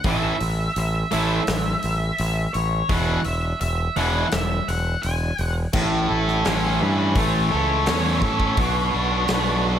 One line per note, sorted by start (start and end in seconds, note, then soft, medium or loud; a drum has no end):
0.04 0.32 A1 medium
0.04 0.34 A2 medium
0.04 0.34 E3 medium
0.04 0.34 A3 loud
0.04 0.35 C#4 loud
0.04 0.35 E4 loud
0.04 kick loud
0.04 open hi-hat medium
0.08 0.78 E5 medium
0.40 0.67 A1 medium
0.40 open hi-hat medium
0.76 1.03 A1 loud
0.76 1.11 E5 medium
0.76 open hi-hat medium
1.11 1.39 A1 medium
1.11 1.40 A2 medium
1.11 1.41 E3 medium
1.11 1.41 A3 loud
1.11 1.41 C#4 loud
1.11 1.41 E4 loud
1.11 2.53 E5 medium
1.11 open hi-hat medium
1.47 1.74 A1 medium
1.47 snare loud
1.47 open hi-hat medium
1.82 2.10 A1 medium
1.82 open hi-hat medium
2.18 2.46 A1 loud
2.18 open hi-hat medium
2.54 2.81 A1 loud
2.54 2.91 C#5 medium
2.54 open hi-hat soft
2.89 3.16 E1 medium
2.89 3.18 E2 medium
2.89 3.18 B2 loud
2.89 3.19 E3 loud
2.89 3.19 G#3 loud
2.89 3.19 B3 loud
2.89 3.19 E4 medium
2.89 3.23 F#5 medium
2.89 kick loud
2.89 open hi-hat medium
3.24 3.52 E1 medium
3.24 3.60 E5 medium
3.24 open hi-hat medium
3.61 3.88 E1 medium
3.61 3.98 E5 loud
3.61 open hi-hat medium
3.96 4.23 E1 medium
3.96 4.25 E2 loud
3.96 4.25 B2 medium
3.96 4.25 E3 medium
3.96 4.26 G#3 loud
3.96 4.26 B3 loud
3.96 4.26 E4 loud
3.96 4.33 F#5 medium
3.96 open hi-hat medium
4.31 4.59 E1 loud
4.31 4.69 E5 medium
4.31 snare loud
4.31 open hi-hat medium
4.68 4.94 E1 medium
4.68 5.01 F#5 medium
4.68 open hi-hat medium
5.03 5.30 E1 medium
5.03 5.53 G#5 loud
5.03 open hi-hat medium
5.38 5.65 E1 medium
5.38 open hi-hat soft
5.72 6.09 A1 medium
5.72 7.52 A2 medium
5.72 8.55 C#4 medium
5.72 8.55 E4 medium
5.72 8.55 A4 medium
5.72 8.55 C#5 medium
5.72 kick loud
5.72 crash loud
6.09 6.44 A1 medium
6.09 7.51 E4 medium
6.09 7.50 A4 medium
6.28 snare soft
6.45 6.80 A1 medium
6.45 7.86 C#4 medium
6.45 6.81 A4 medium
6.45 snare medium
6.45 open hi-hat medium
6.81 7.15 G2 medium
6.81 8.59 E3 medium
6.81 7.17 B4 medium
7.15 7.50 A1 loud
7.15 8.58 A3 medium
7.15 7.52 C#5 medium
7.15 kick loud
7.15 open hi-hat medium
7.51 7.87 C#2 medium
7.51 8.20 E4 medium
7.51 8.21 A4 medium
7.56 9.63 C#5 medium
7.86 8.21 E2 loud
7.86 8.58 C#4 medium
7.86 snare loud
7.86 open hi-hat medium
8.21 8.57 A2 medium
8.21 8.58 E4 medium
8.21 8.58 A4 medium
8.21 kick medium
8.21 snare soft
8.40 kick medium
8.57 8.92 B1 loud
8.57 9.79 B2 medium
8.57 9.79 B3 medium
8.57 9.79 D4 medium
8.57 9.79 F#4 medium
8.57 9.79 B4 medium
8.57 kick loud
8.57 open hi-hat medium
8.93 9.29 B1 medium
8.93 9.79 D4 medium
8.93 9.79 F#4 medium
9.28 9.79 B1 medium
9.28 9.79 B3 medium
9.28 9.79 D4 medium
9.28 snare loud
9.28 open hi-hat soft
9.66 9.79 B2 medium
9.66 9.79 F#3 medium